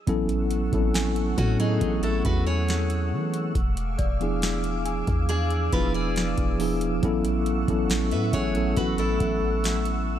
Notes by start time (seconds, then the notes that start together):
0.07 A1 F#3 A3 B3 C#4 E4 A4 F#5 C#6 E6, kick, closed hi-hat
0.29 closed hi-hat
0.51 closed hi-hat
0.72 A1 F#3 B3 C4 E4 A4, kick, closed hi-hat
0.80 C#4
0.94 G#5, snare, closed hi-hat
1.16 closed hi-hat
1.38 A2 C#4 F#4, kick, closed hi-hat
1.59 F#3 B3 C#4 D#4 E4 G#4, closed hi-hat
1.68 A4
1.81 A1, kick, closed hi-hat
2.03 E4 A4, closed hi-hat
2.25 E2 F#4 B4, kick, closed hi-hat
2.46 G#4 C#5
2.69 snare, closed hi-hat
2.90 closed hi-hat
3.12 E3
3.34 closed hi-hat
3.55 E1 G#4 F5 D6, kick, closed hi-hat
3.77 closed hi-hat
3.98 E1 D5, kick, closed hi-hat
4.20 F3 B3 D4 E4 G#4, closed hi-hat
4.42 snare, closed hi-hat
4.64 closed hi-hat
4.85 G#5, closed hi-hat
5.07 E2, kick, closed hi-hat
5.29 D4 G#4, closed hi-hat
5.50 closed hi-hat
5.72 E1 F3 B3 D4 E4 F4 B4, kick, closed hi-hat
5.94 G#4 D5
6.16 snare, closed hi-hat
6.38 E1, kick, closed hi-hat
6.59 F3 B3 D4 E4 G#4, open hi-hat
6.81 closed hi-hat
7.03 A1 F#3 A3 B3 C#4 E4 A4 F#5 C#6, kick, closed hi-hat
7.25 closed hi-hat
7.46 closed hi-hat
7.68 A1 F#3 B3 C#4 E4 A4, kick, closed hi-hat
7.90 snare, closed hi-hat
8.11 A2 B4 E5, closed hi-hat
8.33 A1 G#4 C#5, kick, closed hi-hat
8.55 F#3 B3 C#4 E4 A4, closed hi-hat
8.77 A1 F#4 B4, kick, closed hi-hat
8.98 E4 A4, closed hi-hat
9.20 A1, kick, closed hi-hat
9.64 snare, closed hi-hat
9.85 closed hi-hat